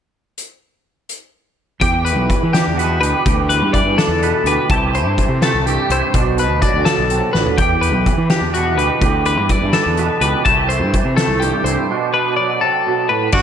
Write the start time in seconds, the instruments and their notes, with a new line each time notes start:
0.38 closed hi-hat
1.09 closed hi-hat
1.81 clean electric guitar E2 G4 G5, picked electric bass E2, kick, closed hi-hat
2.05 clean electric guitar B4, closed hi-hat
2.17 picked electric bass B1
2.28 clean electric guitar E3, kick, closed hi-hat
2.43 picked electric bass E3
2.53 clean electric guitar D4 G4, snare, closed hi-hat
2.68 picked electric bass E2
2.77 clean electric guitar B2 F#4 B4, closed hi-hat
3.01 picked electric bass D2, clean electric guitar G4 B4, closed hi-hat
3.26 picked electric bass D2, clean electric guitar E2 G4, kick, closed hi-hat
3.49 clean electric guitar B4, closed hi-hat
3.62 picked electric bass G2
3.73 clean electric guitar E3 D5, kick, closed hi-hat
3.85 picked electric bass G2
3.98 clean electric guitar D4 A4, snare, closed hi-hat
4.08 picked electric bass E2
4.22 clean electric guitar B2 B4, closed hi-hat
4.44 picked electric bass D2, clean electric guitar G4 B4, closed hi-hat
4.70 picked electric bass C2, clean electric guitar C3 E3 A3 E4 G4 A5, kick, closed hi-hat
4.94 clean electric guitar C5, closed hi-hat
5.06 picked electric bass G2
5.17 clean electric guitar E3, kick, closed hi-hat
5.28 picked electric bass C3
5.42 clean electric guitar A3 A4, snare, closed hi-hat
5.54 picked electric bass C2
5.66 clean electric guitar G2 G4, closed hi-hat
5.89 picked electric bass C2, clean electric guitar E4 C5, closed hi-hat
6.14 picked electric bass B1, clean electric guitar B2 D4, kick, closed hi-hat
6.38 clean electric guitar B4, closed hi-hat
6.50 picked electric bass D2
6.62 clean electric guitar F#3 D5, kick, closed hi-hat
6.74 picked electric bass D2
6.85 clean electric guitar B2 A4, snare, closed hi-hat
6.98 picked electric bass B1
7.10 clean electric guitar C3, closed hi-hat
7.33 picked electric bass A1, clean electric guitar D3 B4, snare
7.46 floor tom
7.58 picked electric bass E2, clean electric guitar E2 G4 G5, kick, closed hi-hat
7.81 clean electric guitar B4, closed hi-hat
7.94 picked electric bass B1
8.06 clean electric guitar E3, kick, closed hi-hat
8.18 picked electric bass E3
8.30 clean electric guitar D4 G4, snare, closed hi-hat
8.41 picked electric bass E2
8.54 clean electric guitar B2 F#4 B4, closed hi-hat
8.77 picked electric bass D2, clean electric guitar G4 B4, closed hi-hat
9.01 picked electric bass D2, clean electric guitar E2 G4, kick, closed hi-hat
9.25 clean electric guitar B4, closed hi-hat
9.37 picked electric bass G2
9.49 clean electric guitar E3 D5, kick, closed hi-hat
9.63 picked electric bass G2
9.73 clean electric guitar D4 A4, snare, closed hi-hat
9.86 picked electric bass E2
9.97 clean electric guitar B2 B4, closed hi-hat
10.21 picked electric bass C#2, clean electric guitar G4 B4, closed hi-hat
10.45 picked electric bass C2, clean electric guitar C3 E3 A3 E4 G4 A5, kick, closed hi-hat
10.69 clean electric guitar C5, closed hi-hat
10.80 picked electric bass G2
10.94 clean electric guitar E3, kick, closed hi-hat
11.05 picked electric bass C3
11.17 clean electric guitar A3 A4, snare, closed hi-hat
11.28 picked electric bass C2
11.40 clean electric guitar G2 G4, closed hi-hat
11.64 picked electric bass C2, clean electric guitar E4 C5, closed hi-hat
11.90 clean electric guitar B2 D4
12.14 clean electric guitar B4
12.36 clean electric guitar F#3 D5
12.61 clean electric guitar C3 A4
12.87 clean electric guitar B2
13.09 clean electric guitar A2 B4
13.32 picked electric bass G1, clean electric guitar G2 A3 D5, trumpet F#4, kick, crash